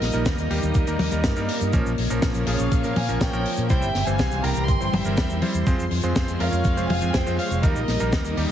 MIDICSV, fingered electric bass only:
0, 0, Header, 1, 2, 480
1, 0, Start_track
1, 0, Key_signature, -4, "minor"
1, 0, Tempo, 491803
1, 1690, Time_signature, 4, 2, 24, 8
1, 8312, End_track
2, 0, Start_track
2, 0, Title_t, "Fingered electric bass"
2, 0, Program_c, 0, 33
2, 11, Note_on_c, 0, 34, 94
2, 115, Note_off_c, 0, 34, 0
2, 130, Note_on_c, 0, 34, 80
2, 234, Note_off_c, 0, 34, 0
2, 250, Note_on_c, 0, 39, 101
2, 354, Note_off_c, 0, 39, 0
2, 370, Note_on_c, 0, 39, 77
2, 474, Note_off_c, 0, 39, 0
2, 492, Note_on_c, 0, 39, 96
2, 595, Note_off_c, 0, 39, 0
2, 614, Note_on_c, 0, 39, 83
2, 716, Note_off_c, 0, 39, 0
2, 732, Note_on_c, 0, 39, 107
2, 835, Note_off_c, 0, 39, 0
2, 851, Note_on_c, 0, 39, 73
2, 955, Note_off_c, 0, 39, 0
2, 971, Note_on_c, 0, 39, 94
2, 1075, Note_off_c, 0, 39, 0
2, 1092, Note_on_c, 0, 39, 86
2, 1195, Note_off_c, 0, 39, 0
2, 1211, Note_on_c, 0, 43, 101
2, 1314, Note_off_c, 0, 43, 0
2, 1334, Note_on_c, 0, 43, 79
2, 1436, Note_off_c, 0, 43, 0
2, 1572, Note_on_c, 0, 43, 84
2, 1675, Note_off_c, 0, 43, 0
2, 1692, Note_on_c, 0, 34, 107
2, 1795, Note_off_c, 0, 34, 0
2, 1814, Note_on_c, 0, 34, 76
2, 1916, Note_off_c, 0, 34, 0
2, 1933, Note_on_c, 0, 34, 93
2, 2036, Note_off_c, 0, 34, 0
2, 2054, Note_on_c, 0, 34, 82
2, 2156, Note_off_c, 0, 34, 0
2, 2172, Note_on_c, 0, 34, 106
2, 2275, Note_off_c, 0, 34, 0
2, 2293, Note_on_c, 0, 34, 79
2, 2396, Note_off_c, 0, 34, 0
2, 2411, Note_on_c, 0, 34, 97
2, 2515, Note_off_c, 0, 34, 0
2, 2533, Note_on_c, 0, 34, 83
2, 2636, Note_off_c, 0, 34, 0
2, 2652, Note_on_c, 0, 34, 106
2, 2755, Note_off_c, 0, 34, 0
2, 2772, Note_on_c, 0, 46, 75
2, 2875, Note_off_c, 0, 46, 0
2, 2893, Note_on_c, 0, 46, 96
2, 2996, Note_off_c, 0, 46, 0
2, 3013, Note_on_c, 0, 34, 83
2, 3116, Note_off_c, 0, 34, 0
2, 3131, Note_on_c, 0, 34, 96
2, 3235, Note_off_c, 0, 34, 0
2, 3251, Note_on_c, 0, 34, 79
2, 3355, Note_off_c, 0, 34, 0
2, 3491, Note_on_c, 0, 46, 86
2, 3595, Note_off_c, 0, 46, 0
2, 3613, Note_on_c, 0, 36, 106
2, 3716, Note_off_c, 0, 36, 0
2, 3729, Note_on_c, 0, 31, 75
2, 3834, Note_off_c, 0, 31, 0
2, 3851, Note_on_c, 0, 31, 95
2, 3955, Note_off_c, 0, 31, 0
2, 3971, Note_on_c, 0, 31, 86
2, 4075, Note_off_c, 0, 31, 0
2, 4093, Note_on_c, 0, 36, 102
2, 4196, Note_off_c, 0, 36, 0
2, 4210, Note_on_c, 0, 36, 76
2, 4314, Note_off_c, 0, 36, 0
2, 4330, Note_on_c, 0, 36, 96
2, 4434, Note_off_c, 0, 36, 0
2, 4451, Note_on_c, 0, 36, 83
2, 4555, Note_off_c, 0, 36, 0
2, 4572, Note_on_c, 0, 31, 106
2, 4675, Note_off_c, 0, 31, 0
2, 4690, Note_on_c, 0, 31, 74
2, 4794, Note_off_c, 0, 31, 0
2, 4809, Note_on_c, 0, 31, 90
2, 4914, Note_off_c, 0, 31, 0
2, 4929, Note_on_c, 0, 31, 82
2, 5034, Note_off_c, 0, 31, 0
2, 5051, Note_on_c, 0, 40, 99
2, 5155, Note_off_c, 0, 40, 0
2, 5168, Note_on_c, 0, 40, 77
2, 5273, Note_off_c, 0, 40, 0
2, 5408, Note_on_c, 0, 40, 84
2, 5513, Note_off_c, 0, 40, 0
2, 5531, Note_on_c, 0, 41, 104
2, 5635, Note_off_c, 0, 41, 0
2, 5648, Note_on_c, 0, 41, 74
2, 5753, Note_off_c, 0, 41, 0
2, 5768, Note_on_c, 0, 41, 94
2, 5873, Note_off_c, 0, 41, 0
2, 5888, Note_on_c, 0, 41, 81
2, 5993, Note_off_c, 0, 41, 0
2, 6011, Note_on_c, 0, 41, 99
2, 6114, Note_off_c, 0, 41, 0
2, 6129, Note_on_c, 0, 41, 76
2, 6234, Note_off_c, 0, 41, 0
2, 6246, Note_on_c, 0, 41, 93
2, 6352, Note_off_c, 0, 41, 0
2, 6367, Note_on_c, 0, 41, 85
2, 6473, Note_off_c, 0, 41, 0
2, 6489, Note_on_c, 0, 41, 106
2, 6594, Note_off_c, 0, 41, 0
2, 6609, Note_on_c, 0, 29, 77
2, 6714, Note_off_c, 0, 29, 0
2, 6729, Note_on_c, 0, 29, 89
2, 6834, Note_off_c, 0, 29, 0
2, 6848, Note_on_c, 0, 41, 80
2, 6953, Note_off_c, 0, 41, 0
2, 6970, Note_on_c, 0, 41, 104
2, 7074, Note_off_c, 0, 41, 0
2, 7087, Note_on_c, 0, 41, 79
2, 7193, Note_off_c, 0, 41, 0
2, 7329, Note_on_c, 0, 29, 84
2, 7434, Note_off_c, 0, 29, 0
2, 7451, Note_on_c, 0, 39, 105
2, 7555, Note_off_c, 0, 39, 0
2, 7568, Note_on_c, 0, 34, 77
2, 7673, Note_off_c, 0, 34, 0
2, 7690, Note_on_c, 0, 34, 93
2, 7794, Note_off_c, 0, 34, 0
2, 7811, Note_on_c, 0, 34, 82
2, 7914, Note_off_c, 0, 34, 0
2, 7930, Note_on_c, 0, 39, 104
2, 8034, Note_off_c, 0, 39, 0
2, 8049, Note_on_c, 0, 39, 75
2, 8154, Note_off_c, 0, 39, 0
2, 8170, Note_on_c, 0, 39, 97
2, 8274, Note_off_c, 0, 39, 0
2, 8312, End_track
0, 0, End_of_file